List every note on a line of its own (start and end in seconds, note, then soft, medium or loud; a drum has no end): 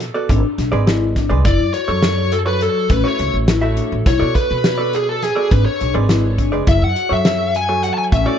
0.00 closed hi-hat medium
0.14 0.29 B3 medium
0.14 0.29 F#4 medium
0.14 0.29 A4 medium
0.14 0.29 D5 medium
0.29 0.41 G#1 loud
0.29 0.46 D4 medium
0.29 kick medium
0.29 closed hi-hat medium
0.58 0.69 B1 medium
0.58 0.75 D4 medium
0.58 snare soft
0.58 closed hi-hat medium
0.72 1.32 G#1 medium
0.72 1.15 G#3 medium
0.72 1.15 G#4 medium
0.72 1.15 B4 medium
0.72 1.15 D5 medium
0.87 1.04 E4 medium
0.87 snare loud
0.87 closed hi-hat medium
1.16 1.33 D4 medium
1.16 kick medium
1.16 snare soft
1.16 closed hi-hat medium
1.29 1.42 C#2 medium
1.29 1.45 G#3 medium
1.29 1.45 G#4 medium
1.29 1.45 B4 medium
1.29 1.45 D5 medium
1.45 1.56 F#1 medium
1.45 1.62 E4 medium
1.45 1.74 D5 loud
1.45 kick loud
1.45 closed hi-hat medium
1.59 1.71 F#2 medium
1.74 1.91 F#4 medium
1.74 2.34 C#5 loud
1.74 closed hi-hat medium
1.88 2.67 F#2 medium
1.88 2.31 F#3 medium
1.88 2.31 F#4 medium
1.88 2.31 A4 medium
1.88 2.31 C#5 medium
2.02 2.37 F#4 medium
2.02 snare loud
2.02 closed hi-hat medium
2.32 2.37 A4 medium
2.32 closed hi-hat medium
2.46 2.89 F#3 medium
2.46 2.89 F#4 medium
2.46 2.89 A4 medium
2.46 2.62 B4 medium
2.46 2.89 C#5 medium
2.61 2.92 A4 medium
2.61 closed hi-hat medium
2.90 3.01 A1 loud
2.90 3.07 C#4 medium
2.90 3.07 B4 medium
2.90 kick loud
2.90 closed hi-hat medium
3.04 3.47 A3 medium
3.04 3.47 E4 medium
3.04 3.47 F#4 medium
3.04 3.47 C#5 medium
3.04 3.35 C#5 medium
3.19 3.31 C#2 medium
3.19 3.36 C#4 medium
3.19 closed hi-hat medium
3.34 3.79 A1 medium
3.48 3.64 E4 medium
3.48 snare loud
3.48 closed hi-hat medium
3.62 4.05 A3 medium
3.62 4.05 E4 medium
3.62 4.05 F#4 medium
3.62 4.05 E5 medium
3.77 3.93 D4 medium
3.77 closed hi-hat medium
3.92 4.03 A1 medium
4.06 4.17 B1 medium
4.06 4.23 E4 medium
4.06 4.35 C#5 medium
4.06 kick loud
4.06 snare soft
4.06 closed hi-hat medium
4.19 4.32 B2 medium
4.19 4.63 B3 medium
4.19 4.63 F#4 medium
4.19 4.63 A4 medium
4.19 4.63 D5 medium
4.35 4.95 B4 loud
4.35 kick medium
4.35 closed hi-hat medium
4.51 5.29 B2 medium
4.64 4.97 F#4 medium
4.64 snare loud
4.64 closed hi-hat medium
4.78 5.21 B3 medium
4.78 5.21 F#4 medium
4.78 5.21 A4 medium
4.78 5.21 D5 medium
4.93 5.09 G#4 medium
4.93 closed hi-hat medium
5.09 5.23 A4 medium
5.22 5.52 G#4 medium
5.22 snare soft
5.22 closed hi-hat medium
5.35 5.51 B3 medium
5.35 5.51 F#4 soft
5.35 5.51 A4 medium
5.35 5.51 D5 medium
5.51 5.63 G#1 loud
5.51 5.68 D4 medium
5.51 5.65 B4 medium
5.51 kick medium
5.51 closed hi-hat medium
5.66 5.93 C#5 medium
5.80 5.92 B1 medium
5.80 5.96 D4 medium
5.80 closed hi-hat medium
5.94 6.53 G#1 medium
5.94 6.37 G#3 medium
5.94 6.37 G#4 medium
5.94 6.37 B4 medium
5.94 6.37 D5 medium
6.09 6.26 E4 medium
6.09 snare medium
6.09 closed hi-hat medium
6.38 6.55 D4 medium
6.38 kick medium
6.38 closed hi-hat medium
6.52 6.64 F1 medium
6.52 6.67 G#3 medium
6.52 6.67 G#4 medium
6.52 6.67 B4 medium
6.52 6.67 D5 medium
6.67 6.78 F#1 medium
6.67 6.84 E4 medium
6.67 6.83 E5 medium
6.67 kick loud
6.67 closed hi-hat medium
6.82 6.93 F#2 medium
6.82 7.12 F#5 medium
6.96 7.12 F#4 medium
6.96 closed hi-hat medium
7.09 7.89 F#2 medium
7.09 7.53 F#3 medium
7.09 7.53 F#4 medium
7.09 7.53 A4 medium
7.09 7.53 C#5 medium
7.09 7.56 E5 medium
7.25 7.58 F#4 medium
7.25 snare loud
7.25 closed hi-hat medium
7.55 7.82 G#5 loud
7.55 closed hi-hat medium
7.69 8.11 F#3 medium
7.69 8.11 F#4 medium
7.69 8.11 A4 medium
7.69 8.11 C#5 medium
7.83 7.94 F#5 medium
7.83 closed hi-hat medium
7.94 7.97 A5 medium
7.98 8.03 G#5 medium
8.12 8.23 A1 loud
8.12 8.29 C#4 medium
8.12 8.27 E5 medium
8.12 kick loud
8.12 closed hi-hat medium
8.26 8.39 A3 medium
8.26 8.39 E4 medium
8.26 8.39 F#4 medium
8.26 8.39 C#5 medium
8.26 8.39 D5 medium